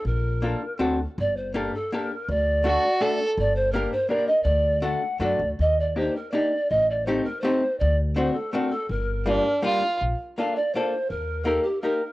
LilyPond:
<<
  \new Staff \with { instrumentName = "Pan flute" } { \time 3/4 \key bes \major \tempo 4 = 164 bes'2 r4 | \key g \minor d''8 c''8 bes'8 a'8 bes'4 | d''2~ d''8 r8 | d''8 c''8 bes'8 c''8 d''8 ees''8 |
d''4 fis''4 d''8. r16 | ees''8 d''8 c''8 bes'8 d''4 | ees''8 d''8 c''8 bes'8 c''4 | d''8 r8 c''8 a'8 bes'8 a'8 |
bes'2 r4 | \key bes \major r4 f''8 d''8 c''4 | bes'4 a'8 g'8 bes'4 | }
  \new Staff \with { instrumentName = "Violin" } { \time 3/4 \key bes \major r2. | \key g \minor r2. | r4 fis'4 a'8. r16 | r2. |
r2. | r2. | r2. | r2. |
r4 d'4 f'4 | \key bes \major r2. | r2. | }
  \new Staff \with { instrumentName = "Hollow-body jazz guitar" } { \time 3/4 \key bes \major r4 <bes d' f' a'>8 r8 <c' d' fis' a'>8 r8 | \key g \minor r4 <bes d' g' a'>8 r8 <bes d' g' a'>8 r8 | r4 <a d' fis' a'>8 r8 <a d' fis' a'>8 r8 | r4 <bes d' g' bes'>8 r8 <bes d' g' bes'>8 r8 |
r4 <a d' fis' a'>8 r8 <a d' fis' a'>8 r8 | r4 <bes d' ees' g'>8 r8 <bes d' ees' g'>8 r8 | r4 <a c' ees' g'>8 r8 <a c' ees' g'>8 r8 | r4 <a c' d' fis'>8 r8 <a c' d' fis'>8 r8 |
r4 <g bes d' f'>8 r8 <g bes d' f'>8 r8 | \key bes \major r4 <bes d' f' a'>8 r8 <bes d' f' a'>8 r8 | r4 <bes ees' g' bes'>8 r8 <bes ees' g' bes'>8 r8 | }
  \new Staff \with { instrumentName = "Upright bass" } { \clef bass \time 3/4 \key bes \major bes,,2 d,4 | \key g \minor g,,2 r4 | d,2 r4 | g,,2 r4 |
d,2 fis,8 d,8 | ees,2 r4 | a,,2 r4 | d,2 r4 |
g,,2 r4 | \key bes \major bes,,8 r2 r8 | ees,2 r4 | }
>>